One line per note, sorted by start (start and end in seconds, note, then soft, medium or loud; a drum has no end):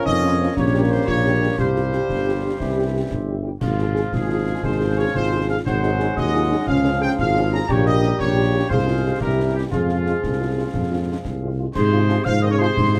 0.00 0.53 F3 medium
0.00 0.56 C#4 medium
0.00 0.57 A#4 medium
0.00 1.43 C#5 medium
0.05 0.48 F2 medium
0.05 0.24 D#4 medium
0.05 0.53 D#5 loud
0.05 concert bass drum medium
0.05 snare medium
0.22 0.30 A#3 medium
0.22 0.39 C#4 medium
0.22 0.30 C#4 medium
0.22 0.30 F4 medium
0.40 0.46 A#3 medium
0.40 0.47 C4 medium
0.40 0.47 C#4 medium
0.40 0.47 F4 medium
0.56 1.00 A#1 medium
0.56 1.57 G3 medium
0.56 1.54 A#3 medium
0.56 1.04 C#4 medium
0.56 2.56 G4 medium
0.56 0.91 C#5 medium
0.56 concert bass drum medium
0.56 snare medium
0.74 0.80 G3 medium
0.74 0.80 C#4 medium
0.74 0.80 G4 medium
0.90 0.97 G3 medium
0.90 0.97 C#4 medium
0.90 0.98 G4 medium
0.90 1.07 C5 medium
1.07 1.50 A#1 medium
1.07 1.26 F4 medium
1.07 1.54 C#5 loud
1.07 concert bass drum medium
1.07 snare medium
1.24 1.31 G3 medium
1.24 1.31 C#4 medium
1.24 1.40 G4 medium
1.24 1.31 G4 medium
1.41 1.48 G3 medium
1.41 1.48 C#4 medium
1.41 1.48 G4 soft
1.41 1.49 G#4 medium
1.58 2.01 C2 medium
1.58 2.60 F3 medium
1.58 3.45 G3 medium
1.58 3.32 G4 medium
1.58 3.41 C5 medium
1.58 2.57 F5 soft
1.58 concert bass drum medium
1.58 snare medium
1.75 1.81 G3 soft
1.75 1.81 F4 soft
1.75 1.81 G4 soft
1.75 snare soft
1.92 1.98 G3 medium
1.92 1.98 F4 soft
1.92 1.98 G4 medium
1.92 snare medium
2.09 2.52 G1 medium
2.09 concert bass drum medium
2.09 snare medium
2.26 2.32 G3 medium
2.26 2.32 F4 soft
2.26 2.32 G4 soft
2.43 2.49 G3 soft
2.43 2.49 F4 soft
2.43 2.49 G4 soft
2.59 3.03 C2 medium
2.59 3.41 E3 medium
2.59 3.41 G4 soft
2.59 3.45 E5 soft
2.59 concert bass drum medium
2.59 snare medium
2.77 2.83 G3 soft
2.77 2.83 E4 soft
2.77 2.83 G4 soft
2.93 3.00 G3 soft
2.93 3.00 E4 soft
2.93 3.00 G4 soft
3.11 3.53 G1 medium
3.11 concert bass drum medium
3.11 snare medium
3.27 3.34 G3 soft
3.27 3.33 E4 soft
3.27 3.34 G4 soft
3.43 3.49 G3 soft
3.43 3.50 E4 soft
3.43 3.50 G4 soft
3.60 4.04 G#1 medium
3.60 5.61 F3 medium
3.60 5.61 G#3 medium
3.60 4.09 F4 medium
3.60 5.61 G#4 medium
3.60 5.60 F5 medium
3.60 concert bass drum medium
3.60 snare medium
3.60 crash soft
3.78 3.84 F3 medium
3.78 3.85 F4 soft
3.78 3.85 G#4 soft
3.78 snare soft
3.94 4.01 F3 medium
3.94 4.01 F4 soft
3.94 4.00 G#4 medium
3.94 snare medium
4.13 4.55 G#1 medium
4.13 4.60 F4 medium
4.13 4.64 G#4 medium
4.13 concert bass drum medium
4.13 snare medium
4.29 4.36 F3 medium
4.29 4.36 F4 medium
4.29 4.36 G#4 medium
4.47 4.53 F3 soft
4.47 4.53 F4 soft
4.47 4.53 G#4 medium
4.63 5.06 G#1 medium
4.63 5.11 G#4 medium
4.63 4.95 C5 medium
4.63 concert bass drum medium
4.63 snare medium
4.80 4.86 F3 medium
4.80 4.86 F4 soft
4.80 4.86 G#4 soft
4.97 5.03 F3 medium
4.97 5.03 F4 soft
4.97 5.03 G#4 medium
4.97 5.15 C#5 medium
5.15 5.57 G#1 medium
5.15 5.68 F4 medium
5.15 5.46 C5 medium
5.15 concert bass drum medium
5.15 snare medium
5.32 5.38 F3 medium
5.32 5.38 F4 medium
5.32 5.38 G#4 medium
5.49 5.55 F3 medium
5.49 5.55 F4 medium
5.49 5.56 G#4 medium
5.49 5.56 F5 medium
5.66 6.08 G#1 medium
5.66 6.64 F#3 medium
5.66 7.65 G#3 medium
5.66 6.17 D#4 medium
5.66 7.65 G#4 medium
5.66 6.13 C5 medium
5.66 6.68 F#5 medium
5.66 concert bass drum medium
5.66 snare medium
5.83 5.89 F#3 medium
5.83 5.89 D#4 medium
5.83 5.89 G#4 medium
5.83 snare soft
6.00 6.06 F#3 medium
6.00 6.06 D#4 medium
6.00 6.06 G#4 medium
6.00 snare medium
6.16 6.55 D#2 medium
6.16 6.33 F#4 medium
6.16 6.64 D#5 loud
6.16 concert bass drum medium
6.16 snare medium
6.34 6.40 F#3 medium
6.34 6.40 D#4 medium
6.34 6.49 F4 medium
6.34 6.40 G#4 medium
6.50 6.57 F#3 medium
6.50 6.57 D#4 medium
6.50 6.67 D#4 medium
6.50 6.56 G#4 medium
6.67 7.10 C#2 medium
6.67 7.69 F3 medium
6.67 7.21 C#4 medium
6.67 6.99 F5 medium
6.67 7.66 F5 medium
6.67 concert bass drum medium
6.67 snare medium
6.85 6.91 F3 medium
6.85 6.91 C#4 medium
6.85 6.91 G#4 medium
7.01 7.08 F3 medium
7.01 7.07 C#4 medium
7.01 7.07 G#4 medium
7.01 7.09 G5 loud
7.19 7.61 G#1 medium
7.19 7.68 F4 medium
7.19 7.50 F5 loud
7.19 concert bass drum medium
7.19 snare medium
7.35 7.42 F3 medium
7.35 7.41 C#4 medium
7.35 7.42 G#4 medium
7.53 7.59 F3 medium
7.53 7.59 C#4 medium
7.53 7.59 G#4 medium
7.53 7.68 A#5 medium
7.67 8.12 A#1 medium
7.67 8.66 G3 medium
7.67 8.66 A#3 medium
7.67 8.66 G4 medium
7.67 8.67 G4 medium
7.67 7.86 C#5 medium
7.67 8.71 G5 medium
7.67 concert bass drum medium
7.67 snare medium
7.67 crash soft
7.85 7.93 G3 medium
7.85 7.92 C#4 medium
7.85 7.92 G4 medium
7.85 8.17 D#5 loud
7.85 snare medium
8.03 8.09 G3 medium
8.03 8.09 C#4 medium
8.03 8.09 G4 medium
8.03 snare medium
8.19 8.62 A#1 medium
8.19 8.66 C#5 medium
8.19 concert bass drum medium
8.19 snare medium
8.36 8.42 G3 medium
8.36 8.42 C#4 medium
8.36 8.42 G4 medium
8.54 8.60 G3 medium
8.54 8.60 C#4 medium
8.54 8.60 G4 medium
8.69 9.13 C2 medium
8.69 9.21 F3 medium
8.69 9.21 G#3 medium
8.69 9.21 G#4 medium
8.69 8.78 G#4 medium
8.69 9.17 C5 medium
8.69 9.17 F5 medium
8.69 concert bass drum medium
8.69 snare medium
8.87 8.93 G#3 medium
8.87 8.94 C4 medium
8.87 8.94 F4 medium
8.87 9.06 F4 medium
9.04 9.10 G#3 medium
9.04 9.11 C4 medium
9.04 9.11 F4 medium
9.04 9.72 G4 medium
9.21 9.64 C2 medium
9.21 9.72 E3 medium
9.21 9.72 G3 medium
9.21 9.58 G4 medium
9.21 9.53 A#4 medium
9.21 9.58 E5 medium
9.21 concert bass drum medium
9.21 snare medium
9.39 9.45 G3 medium
9.39 9.45 C4 medium
9.39 9.45 E4 medium
9.54 9.61 G3 medium
9.54 9.61 C4 soft
9.54 9.61 E4 medium
9.54 9.62 G4 medium
9.70 10.14 F2 medium
9.70 11.54 F3 medium
9.70 11.54 G#3 medium
9.70 11.19 F4 medium
9.70 11.46 G#4 medium
9.70 11.55 G#4 medium
9.70 11.59 F5 medium
9.70 concert bass drum medium
9.70 snare medium
9.89 9.95 G#3 soft
9.89 9.95 C4 soft
9.89 9.95 F4 soft
9.89 snare soft
10.06 10.12 G#3 soft
10.06 10.12 C4 soft
10.06 10.12 F4 soft
10.06 snare medium
10.23 10.65 C2 medium
10.23 concert bass drum medium
10.23 snare medium
10.40 10.46 G#3 soft
10.40 10.46 C4 soft
10.40 10.46 F4 soft
10.57 10.63 G#3 soft
10.57 10.63 C4 soft
10.57 10.64 F4 soft
10.74 11.16 F2 medium
10.74 concert bass drum medium
10.74 snare medium
10.92 10.97 G#3 soft
10.92 10.98 C4 soft
10.92 10.98 F4 soft
11.08 11.14 G#3 soft
11.08 11.14 C4 soft
11.08 11.14 F4 soft
11.25 11.67 C2 medium
11.25 concert bass drum medium
11.25 snare medium
11.43 11.48 G#3 soft
11.43 11.49 C4 soft
11.43 11.48 F4 soft
11.59 11.65 G#3 soft
11.59 11.65 C4 soft
11.59 11.65 F4 soft
11.74 12.18 G#2 medium
11.74 12.29 C3 medium
11.74 12.22 G#4 medium
11.74 12.22 C5 loud
11.74 12.26 C6 medium
11.74 concert bass drum medium
11.74 snare medium
11.74 crash medium
11.93 11.99 F3 medium
11.93 11.99 C4 medium
11.93 11.99 F4 medium
12.07 12.14 F3 medium
12.07 12.16 F3 medium
12.07 12.14 G#3 medium
12.07 12.16 C4 medium
12.07 12.16 F4 medium
12.07 snare medium
12.24 12.68 G#2 medium
12.24 12.42 F3 medium
12.24 12.33 C5 medium
12.24 12.41 F5 loud
12.24 12.41 F6 medium
12.24 concert bass drum medium
12.24 snare medium
12.42 12.50 D#3 medium
12.42 12.49 F3 medium
12.42 12.50 C4 medium
12.42 12.50 F4 medium
12.42 12.46 C5 medium
12.42 12.46 D#5 medium
12.42 12.46 D#6 medium
12.50 12.62 C#3 medium
12.50 12.55 A#4 medium
12.50 12.59 C#5 medium
12.50 12.54 C#6 medium
12.58 13.00 C3 medium
12.58 12.65 F3 medium
12.58 12.66 F3 medium
12.58 12.66 G#3 medium
12.58 12.66 C4 medium
12.58 12.66 F4 medium
12.58 13.00 G#4 medium
12.58 13.00 C5 medium
12.58 13.00 C6 medium
12.77 13.00 G#2 medium
12.77 concert bass drum medium
12.77 snare medium
12.94 13.00 F3 medium
12.94 13.00 C4 medium
12.94 13.00 F4 medium